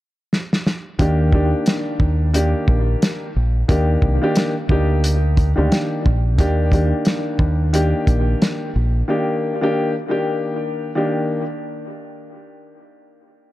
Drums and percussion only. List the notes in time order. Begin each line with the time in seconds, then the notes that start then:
0.33 snare
0.53 snare
0.67 snare
0.99 kick, closed hi-hat
1.32 kick
1.66 snare, closed hi-hat
2.00 kick
2.34 closed hi-hat
2.68 kick
3.02 snare, closed hi-hat
3.69 kick, closed hi-hat
4.02 kick
4.35 snare, closed hi-hat
4.69 kick
5.04 closed hi-hat
5.37 kick, closed hi-hat
5.72 snare, closed hi-hat
6.06 kick
6.39 kick, closed hi-hat
6.72 kick, closed hi-hat
7.05 snare, closed hi-hat
7.39 kick
7.74 closed hi-hat
8.07 kick, closed hi-hat
8.42 snare, closed hi-hat